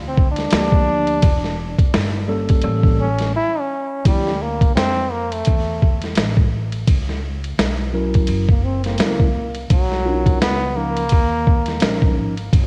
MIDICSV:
0, 0, Header, 1, 6, 480
1, 0, Start_track
1, 0, Tempo, 705882
1, 834, Time_signature, 4, 2, 24, 8
1, 8614, End_track
2, 0, Start_track
2, 0, Title_t, "Tine electric piano"
2, 0, Program_c, 0, 4
2, 350, Note_on_c, 0, 53, 75
2, 352, Note_on_c, 0, 58, 71
2, 357, Note_on_c, 0, 62, 67
2, 357, Note_on_c, 0, 66, 64
2, 403, Note_on_c, 0, 67, 86
2, 407, Note_off_c, 0, 66, 0
2, 832, Note_off_c, 0, 53, 0
2, 833, Note_off_c, 0, 58, 0
2, 836, Note_off_c, 0, 62, 0
2, 859, Note_off_c, 0, 67, 0
2, 1549, Note_on_c, 0, 55, 86
2, 1552, Note_on_c, 0, 58, 74
2, 1554, Note_on_c, 0, 61, 71
2, 1558, Note_on_c, 0, 69, 94
2, 1781, Note_off_c, 0, 55, 0
2, 1784, Note_off_c, 0, 58, 0
2, 1787, Note_off_c, 0, 61, 0
2, 1788, Note_off_c, 0, 69, 0
2, 1789, Note_on_c, 0, 55, 81
2, 1793, Note_on_c, 0, 58, 71
2, 1795, Note_on_c, 0, 61, 70
2, 1796, Note_on_c, 0, 69, 93
2, 2088, Note_off_c, 0, 55, 0
2, 2090, Note_off_c, 0, 58, 0
2, 2091, Note_off_c, 0, 61, 0
2, 2091, Note_off_c, 0, 69, 0
2, 2751, Note_on_c, 0, 53, 62
2, 2754, Note_on_c, 0, 60, 50
2, 2755, Note_on_c, 0, 64, 57
2, 2760, Note_on_c, 0, 67, 65
2, 2933, Note_off_c, 0, 53, 0
2, 2934, Note_off_c, 0, 60, 0
2, 2935, Note_off_c, 0, 64, 0
2, 2938, Note_off_c, 0, 67, 0
2, 5392, Note_on_c, 0, 54, 86
2, 5396, Note_on_c, 0, 61, 75
2, 5398, Note_on_c, 0, 64, 72
2, 5401, Note_on_c, 0, 70, 87
2, 5745, Note_off_c, 0, 54, 0
2, 5747, Note_off_c, 0, 61, 0
2, 5749, Note_off_c, 0, 64, 0
2, 5750, Note_off_c, 0, 70, 0
2, 6114, Note_on_c, 0, 54, 79
2, 6116, Note_on_c, 0, 61, 73
2, 6119, Note_on_c, 0, 64, 71
2, 6121, Note_on_c, 0, 70, 94
2, 6294, Note_off_c, 0, 54, 0
2, 6295, Note_off_c, 0, 61, 0
2, 6297, Note_off_c, 0, 64, 0
2, 6298, Note_off_c, 0, 70, 0
2, 6835, Note_on_c, 0, 65, 67
2, 6839, Note_on_c, 0, 61, 61
2, 6842, Note_on_c, 0, 62, 51
2, 6844, Note_on_c, 0, 70, 80
2, 6887, Note_on_c, 0, 63, 64
2, 6890, Note_off_c, 0, 62, 0
2, 7187, Note_off_c, 0, 65, 0
2, 7189, Note_off_c, 0, 61, 0
2, 7191, Note_off_c, 0, 70, 0
2, 7213, Note_off_c, 0, 63, 0
2, 7313, Note_on_c, 0, 53, 61
2, 7317, Note_on_c, 0, 61, 59
2, 7320, Note_on_c, 0, 63, 62
2, 7324, Note_on_c, 0, 70, 67
2, 7494, Note_off_c, 0, 53, 0
2, 7496, Note_off_c, 0, 61, 0
2, 7497, Note_off_c, 0, 63, 0
2, 7500, Note_off_c, 0, 70, 0
2, 8031, Note_on_c, 0, 53, 89
2, 8033, Note_on_c, 0, 61, 79
2, 8037, Note_on_c, 0, 63, 78
2, 8040, Note_on_c, 0, 70, 98
2, 8385, Note_off_c, 0, 53, 0
2, 8386, Note_off_c, 0, 61, 0
2, 8388, Note_off_c, 0, 63, 0
2, 8390, Note_off_c, 0, 70, 0
2, 8614, End_track
3, 0, Start_track
3, 0, Title_t, "Trombone"
3, 0, Program_c, 1, 57
3, 56, Note_on_c, 1, 60, 84
3, 195, Note_off_c, 1, 60, 0
3, 212, Note_on_c, 1, 62, 101
3, 1376, Note_off_c, 1, 62, 0
3, 2043, Note_on_c, 1, 61, 89
3, 2263, Note_off_c, 1, 61, 0
3, 2285, Note_on_c, 1, 64, 110
3, 2446, Note_on_c, 1, 61, 89
3, 2456, Note_off_c, 1, 64, 0
3, 2760, Note_off_c, 1, 61, 0
3, 2769, Note_on_c, 1, 55, 92
3, 3005, Note_on_c, 1, 58, 86
3, 3015, Note_off_c, 1, 55, 0
3, 3228, Note_off_c, 1, 58, 0
3, 3232, Note_on_c, 1, 60, 115
3, 3478, Note_on_c, 1, 58, 98
3, 3488, Note_off_c, 1, 60, 0
3, 3624, Note_on_c, 1, 57, 89
3, 3634, Note_off_c, 1, 58, 0
3, 4100, Note_off_c, 1, 57, 0
3, 6610, Note_on_c, 1, 54, 98
3, 7055, Note_off_c, 1, 54, 0
3, 7084, Note_on_c, 1, 59, 114
3, 7319, Note_on_c, 1, 58, 109
3, 7330, Note_off_c, 1, 59, 0
3, 8277, Note_off_c, 1, 58, 0
3, 8614, End_track
4, 0, Start_track
4, 0, Title_t, "Trombone"
4, 0, Program_c, 2, 57
4, 5780, Note_on_c, 2, 58, 72
4, 5876, Note_on_c, 2, 60, 83
4, 5886, Note_off_c, 2, 58, 0
4, 6009, Note_off_c, 2, 60, 0
4, 6021, Note_on_c, 2, 58, 79
4, 6570, Note_off_c, 2, 58, 0
4, 8614, End_track
5, 0, Start_track
5, 0, Title_t, "Upright bass"
5, 0, Program_c, 3, 32
5, 0, Note_on_c, 3, 38, 96
5, 333, Note_off_c, 3, 38, 0
5, 355, Note_on_c, 3, 38, 90
5, 811, Note_off_c, 3, 38, 0
5, 834, Note_on_c, 3, 28, 103
5, 1196, Note_off_c, 3, 28, 0
5, 1319, Note_on_c, 3, 31, 95
5, 1773, Note_off_c, 3, 31, 0
5, 1793, Note_on_c, 3, 33, 115
5, 2250, Note_off_c, 3, 33, 0
5, 2755, Note_on_c, 3, 38, 98
5, 3211, Note_off_c, 3, 38, 0
5, 3231, Note_on_c, 3, 41, 77
5, 3689, Note_off_c, 3, 41, 0
5, 3723, Note_on_c, 3, 40, 86
5, 4175, Note_off_c, 3, 40, 0
5, 4190, Note_on_c, 3, 33, 90
5, 4648, Note_off_c, 3, 33, 0
5, 4675, Note_on_c, 3, 37, 98
5, 5131, Note_off_c, 3, 37, 0
5, 5154, Note_on_c, 3, 35, 89
5, 5610, Note_off_c, 3, 35, 0
5, 5633, Note_on_c, 3, 30, 100
5, 6090, Note_off_c, 3, 30, 0
5, 6116, Note_on_c, 3, 37, 83
5, 6343, Note_off_c, 3, 37, 0
5, 6355, Note_on_c, 3, 36, 78
5, 6583, Note_off_c, 3, 36, 0
5, 6598, Note_on_c, 3, 35, 101
5, 7052, Note_off_c, 3, 35, 0
5, 7078, Note_on_c, 3, 37, 88
5, 7532, Note_off_c, 3, 37, 0
5, 7563, Note_on_c, 3, 39, 102
5, 8015, Note_off_c, 3, 39, 0
5, 8040, Note_on_c, 3, 34, 95
5, 8265, Note_off_c, 3, 34, 0
5, 8276, Note_on_c, 3, 32, 84
5, 8503, Note_off_c, 3, 32, 0
5, 8520, Note_on_c, 3, 31, 100
5, 8614, Note_off_c, 3, 31, 0
5, 8614, End_track
6, 0, Start_track
6, 0, Title_t, "Drums"
6, 119, Note_on_c, 9, 36, 93
6, 187, Note_off_c, 9, 36, 0
6, 246, Note_on_c, 9, 51, 57
6, 261, Note_on_c, 9, 38, 35
6, 314, Note_off_c, 9, 51, 0
6, 329, Note_off_c, 9, 38, 0
6, 343, Note_on_c, 9, 44, 48
6, 343, Note_on_c, 9, 51, 74
6, 358, Note_on_c, 9, 38, 114
6, 411, Note_off_c, 9, 44, 0
6, 411, Note_off_c, 9, 51, 0
6, 426, Note_off_c, 9, 38, 0
6, 491, Note_on_c, 9, 36, 94
6, 559, Note_off_c, 9, 36, 0
6, 728, Note_on_c, 9, 51, 53
6, 796, Note_off_c, 9, 51, 0
6, 831, Note_on_c, 9, 51, 81
6, 834, Note_on_c, 9, 36, 107
6, 899, Note_off_c, 9, 51, 0
6, 902, Note_off_c, 9, 36, 0
6, 980, Note_on_c, 9, 38, 36
6, 1048, Note_off_c, 9, 38, 0
6, 1214, Note_on_c, 9, 36, 95
6, 1216, Note_on_c, 9, 51, 56
6, 1282, Note_off_c, 9, 36, 0
6, 1284, Note_off_c, 9, 51, 0
6, 1318, Note_on_c, 9, 38, 127
6, 1318, Note_on_c, 9, 44, 49
6, 1318, Note_on_c, 9, 51, 69
6, 1386, Note_off_c, 9, 38, 0
6, 1386, Note_off_c, 9, 44, 0
6, 1386, Note_off_c, 9, 51, 0
6, 1692, Note_on_c, 9, 51, 62
6, 1700, Note_on_c, 9, 36, 84
6, 1760, Note_off_c, 9, 51, 0
6, 1768, Note_off_c, 9, 36, 0
6, 1779, Note_on_c, 9, 51, 73
6, 1847, Note_off_c, 9, 51, 0
6, 1927, Note_on_c, 9, 36, 96
6, 1995, Note_off_c, 9, 36, 0
6, 2166, Note_on_c, 9, 51, 55
6, 2180, Note_on_c, 9, 38, 38
6, 2234, Note_off_c, 9, 51, 0
6, 2248, Note_off_c, 9, 38, 0
6, 2754, Note_on_c, 9, 51, 79
6, 2755, Note_on_c, 9, 36, 101
6, 2822, Note_off_c, 9, 51, 0
6, 2823, Note_off_c, 9, 36, 0
6, 2902, Note_on_c, 9, 38, 33
6, 2970, Note_off_c, 9, 38, 0
6, 3135, Note_on_c, 9, 36, 87
6, 3139, Note_on_c, 9, 51, 52
6, 3203, Note_off_c, 9, 36, 0
6, 3207, Note_off_c, 9, 51, 0
6, 3243, Note_on_c, 9, 44, 50
6, 3243, Note_on_c, 9, 51, 67
6, 3244, Note_on_c, 9, 38, 117
6, 3311, Note_off_c, 9, 44, 0
6, 3311, Note_off_c, 9, 51, 0
6, 3312, Note_off_c, 9, 38, 0
6, 3618, Note_on_c, 9, 51, 59
6, 3686, Note_off_c, 9, 51, 0
6, 3706, Note_on_c, 9, 51, 72
6, 3723, Note_on_c, 9, 36, 86
6, 3774, Note_off_c, 9, 51, 0
6, 3791, Note_off_c, 9, 36, 0
6, 3960, Note_on_c, 9, 36, 80
6, 4028, Note_off_c, 9, 36, 0
6, 4091, Note_on_c, 9, 51, 55
6, 4106, Note_on_c, 9, 38, 35
6, 4159, Note_off_c, 9, 51, 0
6, 4174, Note_off_c, 9, 38, 0
6, 4186, Note_on_c, 9, 44, 48
6, 4186, Note_on_c, 9, 51, 65
6, 4200, Note_on_c, 9, 38, 107
6, 4254, Note_off_c, 9, 44, 0
6, 4254, Note_off_c, 9, 51, 0
6, 4268, Note_off_c, 9, 38, 0
6, 4332, Note_on_c, 9, 36, 88
6, 4400, Note_off_c, 9, 36, 0
6, 4572, Note_on_c, 9, 51, 53
6, 4640, Note_off_c, 9, 51, 0
6, 4675, Note_on_c, 9, 51, 82
6, 4676, Note_on_c, 9, 36, 102
6, 4743, Note_off_c, 9, 51, 0
6, 4744, Note_off_c, 9, 36, 0
6, 4822, Note_on_c, 9, 38, 33
6, 4890, Note_off_c, 9, 38, 0
6, 5059, Note_on_c, 9, 51, 51
6, 5127, Note_off_c, 9, 51, 0
6, 5161, Note_on_c, 9, 38, 120
6, 5161, Note_on_c, 9, 44, 46
6, 5161, Note_on_c, 9, 51, 69
6, 5229, Note_off_c, 9, 38, 0
6, 5229, Note_off_c, 9, 44, 0
6, 5229, Note_off_c, 9, 51, 0
6, 5535, Note_on_c, 9, 51, 57
6, 5542, Note_on_c, 9, 36, 80
6, 5603, Note_off_c, 9, 51, 0
6, 5610, Note_off_c, 9, 36, 0
6, 5623, Note_on_c, 9, 51, 70
6, 5691, Note_off_c, 9, 51, 0
6, 5769, Note_on_c, 9, 36, 91
6, 5837, Note_off_c, 9, 36, 0
6, 6009, Note_on_c, 9, 51, 55
6, 6024, Note_on_c, 9, 38, 34
6, 6077, Note_off_c, 9, 51, 0
6, 6092, Note_off_c, 9, 38, 0
6, 6104, Note_on_c, 9, 44, 47
6, 6104, Note_on_c, 9, 51, 67
6, 6119, Note_on_c, 9, 38, 103
6, 6172, Note_off_c, 9, 44, 0
6, 6172, Note_off_c, 9, 51, 0
6, 6187, Note_off_c, 9, 38, 0
6, 6253, Note_on_c, 9, 36, 93
6, 6321, Note_off_c, 9, 36, 0
6, 6490, Note_on_c, 9, 51, 53
6, 6558, Note_off_c, 9, 51, 0
6, 6595, Note_on_c, 9, 51, 79
6, 6597, Note_on_c, 9, 36, 104
6, 6663, Note_off_c, 9, 51, 0
6, 6665, Note_off_c, 9, 36, 0
6, 6743, Note_on_c, 9, 38, 33
6, 6811, Note_off_c, 9, 38, 0
6, 6976, Note_on_c, 9, 36, 97
6, 6979, Note_on_c, 9, 51, 58
6, 7044, Note_off_c, 9, 36, 0
6, 7047, Note_off_c, 9, 51, 0
6, 7083, Note_on_c, 9, 38, 111
6, 7083, Note_on_c, 9, 44, 48
6, 7083, Note_on_c, 9, 51, 68
6, 7151, Note_off_c, 9, 38, 0
6, 7151, Note_off_c, 9, 44, 0
6, 7151, Note_off_c, 9, 51, 0
6, 7457, Note_on_c, 9, 51, 63
6, 7525, Note_off_c, 9, 51, 0
6, 7543, Note_on_c, 9, 51, 74
6, 7564, Note_on_c, 9, 36, 81
6, 7611, Note_off_c, 9, 51, 0
6, 7632, Note_off_c, 9, 36, 0
6, 7801, Note_on_c, 9, 36, 89
6, 7869, Note_off_c, 9, 36, 0
6, 7929, Note_on_c, 9, 51, 55
6, 7944, Note_on_c, 9, 38, 34
6, 7997, Note_off_c, 9, 51, 0
6, 8012, Note_off_c, 9, 38, 0
6, 8026, Note_on_c, 9, 44, 48
6, 8026, Note_on_c, 9, 51, 70
6, 8041, Note_on_c, 9, 38, 118
6, 8094, Note_off_c, 9, 44, 0
6, 8094, Note_off_c, 9, 51, 0
6, 8109, Note_off_c, 9, 38, 0
6, 8175, Note_on_c, 9, 36, 86
6, 8243, Note_off_c, 9, 36, 0
6, 8415, Note_on_c, 9, 51, 53
6, 8483, Note_off_c, 9, 51, 0
6, 8519, Note_on_c, 9, 36, 109
6, 8522, Note_on_c, 9, 51, 79
6, 8587, Note_off_c, 9, 36, 0
6, 8590, Note_off_c, 9, 51, 0
6, 8614, End_track
0, 0, End_of_file